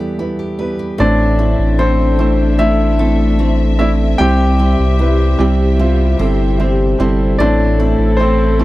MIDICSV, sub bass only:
0, 0, Header, 1, 2, 480
1, 0, Start_track
1, 0, Key_signature, 0, "minor"
1, 0, Tempo, 800000
1, 596, Time_signature, 4, 2, 24, 8
1, 5186, End_track
2, 0, Start_track
2, 0, Title_t, "Sub bass"
2, 0, Program_c, 0, 38
2, 597, Note_on_c, 0, 33, 102
2, 933, Note_off_c, 0, 33, 0
2, 953, Note_on_c, 0, 33, 100
2, 2490, Note_off_c, 0, 33, 0
2, 2518, Note_on_c, 0, 36, 104
2, 2853, Note_off_c, 0, 36, 0
2, 2877, Note_on_c, 0, 36, 93
2, 3212, Note_off_c, 0, 36, 0
2, 3235, Note_on_c, 0, 36, 91
2, 3692, Note_off_c, 0, 36, 0
2, 3715, Note_on_c, 0, 31, 94
2, 4172, Note_off_c, 0, 31, 0
2, 4198, Note_on_c, 0, 31, 88
2, 4420, Note_off_c, 0, 31, 0
2, 4434, Note_on_c, 0, 33, 102
2, 4771, Note_off_c, 0, 33, 0
2, 4793, Note_on_c, 0, 33, 100
2, 5186, Note_off_c, 0, 33, 0
2, 5186, End_track
0, 0, End_of_file